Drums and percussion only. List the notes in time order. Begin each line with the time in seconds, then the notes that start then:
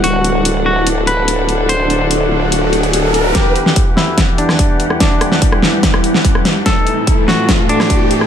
0.04 closed hi-hat
0.24 closed hi-hat
0.45 closed hi-hat
0.87 closed hi-hat
1.07 closed hi-hat
1.28 closed hi-hat
1.49 closed hi-hat
1.69 closed hi-hat
1.90 closed hi-hat
2.11 closed hi-hat
2.52 closed hi-hat
2.73 closed hi-hat
2.83 closed hi-hat
2.93 closed hi-hat
3.14 closed hi-hat
3.35 kick, snare, closed hi-hat
3.56 closed hi-hat
3.66 snare
3.76 kick, closed hi-hat
3.97 snare
4.18 kick, snare, closed hi-hat
4.38 closed hi-hat
4.49 cross-stick, snare
4.59 kick, closed hi-hat
4.80 closed hi-hat
4.90 cross-stick
5.00 kick, snare, closed hi-hat
5.21 cross-stick, closed hi-hat
5.32 snare
5.42 kick, closed hi-hat
5.52 cross-stick
5.63 snare
5.83 kick, snare, closed hi-hat
5.94 cross-stick
6.04 closed hi-hat
6.14 snare
6.25 kick, closed hi-hat
6.35 cross-stick
6.45 snare, closed hi-hat
6.66 kick, snare, closed hi-hat
6.87 closed hi-hat
7.07 kick, closed hi-hat
7.28 snare
7.49 kick, snare, closed hi-hat
7.69 closed hi-hat
7.80 cross-stick, snare
7.90 kick, closed hi-hat
8.11 closed hi-hat
8.21 cross-stick